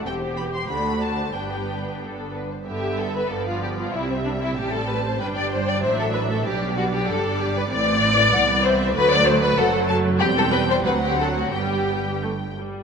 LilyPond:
<<
  \new Staff \with { instrumentName = "Violin section" } { \time 2/4 \key g \major \tempo 4 = 94 g''8 b''16 c'''16 b''8 a''8 | g''4 r4 | e''4 d''4 | e''4 a''4 |
g''4 e''4 | d''4 d''4~ | d''4 fis''8 e''8 | d''4 fis''8 a''8 |
g''4 fis''4 | g''4. r8 | }
  \new Staff \with { instrumentName = "Violin section" } { \time 2/4 \key g \major <g' c''>4 <fis' c''>4 | <g' b'>4 a'8 b'16 c''16 | g'8 a'16 b'16 a'16 f'16 g'16 f'16 | e'16 c'16 d'16 e'16 g'16 a'16 b'16 c''16 |
b'16 d''16 c''16 d''16 c''16 a'16 b'16 a'16 | g'8 fis'16 g'16 a'8 g'16 b'16 | d''4. c''8 | b'16 d''16 c''16 b'16 a'8 r8 |
g'16 a'16 b'16 c''16 b'16 g'16 a'16 fis'16 | g'4 r4 | }
  \new Staff \with { instrumentName = "Viola section" } { \time 2/4 \key g \major << { g'4 d'4 | d'4. r8 | b4 b4 | c'4 c'4 |
d'4 d'4 | d'2 | c'4 b4 | a4 a4 |
c'4 c'4 | b4 a8 g8 | } \\ { c'8 b8 a4 | b4. r8 | d4 f4 | g4 g4 |
g4 fis4 | g2 | e2 | fis4 fis4 |
g4 fis4 | g4 r4 | } >> }
  \new Staff \with { instrumentName = "Cello section" } { \clef bass \time 2/4 \key g \major e,4 d,4 | g,4. r8 | g,4 g,4 | c4 a,4 |
g,4 a,4 | b,4 g,4 | a,4 c,4 | d,4 fis,4 |
e,4 d,4 | g,4. r8 | }
  \new Staff \with { instrumentName = "Double bass section" } { \clef bass \time 2/4 \key g \major e,,4 d,4 | g,,4. r8 | g,,4 g,,4 | c,4 a,,4 |
g,,4 a,,4 | b,,4 g,,4 | a,,4 c,4 | d,4 fis,,4 |
e,,4 d,4 | g,,4. r8 | }
>>